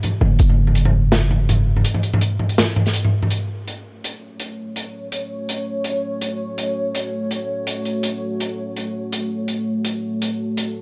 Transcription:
0.03 closed hi-hat medium
0.03 mid tom medium
0.21 0.38 F#1 medium
0.21 mid tom medium
0.39 1.85 F#1 loud
0.39 kick loud
0.39 closed hi-hat medium
0.49 mid tom medium
0.67 mid tom soft
0.75 closed hi-hat medium
0.85 mid tom medium
1.12 snare loud
1.12 closed hi-hat medium
1.12 mid tom medium
1.31 mid tom medium
1.49 closed hi-hat medium
1.49 mid tom medium
1.76 mid tom medium
1.84 closed hi-hat medium
1.94 mid tom medium
2.03 closed hi-hat medium
2.14 mid tom medium
2.21 closed hi-hat medium
2.39 mid tom medium
2.49 closed hi-hat medium
2.58 snare loud
2.58 closed hi-hat medium
2.58 mid tom medium
2.76 mid tom medium
2.86 snare soft
2.86 closed hi-hat medium
2.93 closed hi-hat medium
3.05 mid tom medium
3.23 mid tom medium
3.30 10.82 A3 medium
3.30 10.82 F#4 medium
3.30 9.10 C#5 medium
3.30 closed hi-hat medium
3.68 closed hi-hat medium
4.04 closed hi-hat medium
4.40 closed hi-hat medium
4.76 closed hi-hat medium
5.12 closed hi-hat medium
5.49 closed hi-hat medium
5.84 closed hi-hat medium
6.21 closed hi-hat medium
6.58 closed hi-hat medium
6.95 closed hi-hat medium
7.31 closed hi-hat medium
7.67 closed hi-hat medium
7.85 closed hi-hat soft
8.03 closed hi-hat medium
8.40 closed hi-hat medium
8.76 closed hi-hat medium
9.12 10.82 A4 medium
9.12 closed hi-hat medium
9.48 closed hi-hat medium
9.85 closed hi-hat medium
10.22 closed hi-hat medium
10.57 closed hi-hat medium

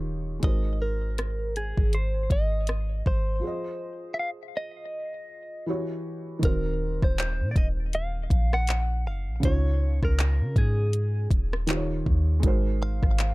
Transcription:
0.00 0.39 D#1 loud
0.00 0.42 D#3 medium
0.00 0.40 D#4 medium
0.00 0.43 F4 medium
0.00 0.44 G4 medium
0.00 0.44 C#5 medium
0.39 1.73 G#1 loud
0.39 3.37 G#3 medium
0.39 3.38 D#4 medium
0.39 3.39 F#4 medium
0.39 kick loud
0.39 closed hi-hat medium
0.44 3.40 A#4 medium
0.44 3.41 C5 medium
0.44 0.79 D#5 medium
0.82 1.56 A#4 medium
1.18 cross-stick loud
1.18 closed hi-hat medium
1.56 1.95 G#4 medium
1.56 closed hi-hat medium
1.77 2.29 G#1 loud
1.77 kick medium
1.93 2.31 C5 medium
1.93 closed hi-hat medium
2.30 3.02 G#1 loud
2.30 3.07 D#5 medium
2.30 kick medium
2.30 closed hi-hat medium
2.67 cross-stick loud
2.67 closed hi-hat medium
3.06 3.42 G#1 loud
3.06 4.14 C5 loud
3.06 kick medium
3.40 5.62 F3 medium
3.40 5.63 F4 medium
3.40 5.64 G#4 medium
3.45 5.65 C5 medium
3.45 5.66 D#5 medium
4.14 4.19 E5 medium
4.19 4.29 F5 loud
4.57 5.65 D#5 loud
5.66 6.42 E3 medium
5.66 6.43 E4 medium
5.66 6.43 F#4 medium
5.66 6.44 G4 medium
5.66 6.44 C#5 medium
6.39 9.37 D#3 medium
6.39 9.39 C4 medium
6.39 9.38 D#4 medium
6.39 closed hi-hat medium
6.43 7.00 D#1 loud
6.43 9.40 F#4 medium
6.43 7.04 A#4 medium
6.43 9.41 C5 medium
6.43 kick loud
7.02 7.42 D#1 loud
7.02 7.19 C5 medium
7.02 kick loud
7.02 cross-stick medium
7.18 7.48 C5 medium
7.18 clap loud
7.18 closed hi-hat medium
7.40 7.55 A#2 loud
7.51 7.56 D5 medium
7.56 8.28 D#1 loud
7.56 7.67 D#5 loud
7.56 kick loud
7.56 closed hi-hat medium
7.93 8.54 F5 loud
7.93 closed hi-hat medium
8.30 9.08 A#1 loud
8.30 kick medium
8.30 closed hi-hat medium
8.53 9.07 F#5 loud
8.53 cross-stick loud
8.67 clap loud
8.67 closed hi-hat medium
9.06 9.29 F#1 loud
9.06 9.45 F5 loud
9.28 9.42 A#1 loud
9.40 10.00 C#2 loud
9.40 11.62 C#3 medium
9.40 11.63 C#4 medium
9.40 11.64 D#4 medium
9.40 kick loud
9.40 closed hi-hat medium
9.45 11.65 F4 medium
9.45 9.99 C#5 loud
9.45 11.66 C#5 medium
10.03 10.42 C#2 loud
10.03 10.58 A#4 medium
10.03 kick loud
10.03 cross-stick medium
10.19 clap loud
10.19 closed hi-hat medium
10.40 10.55 C#3 loud
10.56 11.28 G#2 loud
10.56 11.28 G#4 medium
10.56 kick loud
10.56 closed hi-hat medium
10.93 closed hi-hat medium
11.31 12.03 D#1 loud
11.31 kick loud
11.31 closed hi-hat medium
11.53 cross-stick loud
11.67 12.42 D#3 medium
11.67 12.40 D#4 medium
11.67 12.43 F4 medium
11.67 12.44 G4 medium
11.67 11.77 C5 medium
11.67 clap loud
11.67 closed hi-hat medium
11.77 12.47 C#5 medium
12.06 12.42 D#2 loud
12.06 kick medium
12.40 13.00 G#1 loud
12.40 13.34 G#3 medium
12.40 13.34 D#4 medium
12.40 13.34 F#4 medium
12.40 kick loud
12.40 closed hi-hat medium
12.46 13.34 A#4 medium
12.46 13.34 C5 medium
12.83 13.34 F5 loud
13.03 13.34 G#1 loud
13.03 kick medium
13.03 cross-stick medium
13.19 clap loud
13.19 closed hi-hat medium

